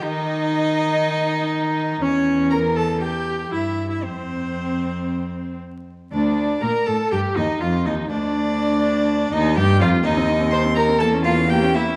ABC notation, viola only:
X:1
M:4/4
L:1/16
Q:1/4=121
K:Bb
V:1 name="Viola"
E16 | ^C4 B2 A2 G4 =E3 E | C12 z4 | D4 B2 A2 G2 E2 F2 E2 |
D8- D2 E2 G2 F2 | E C E C E C E C B, ^C B, C B, C B, C |]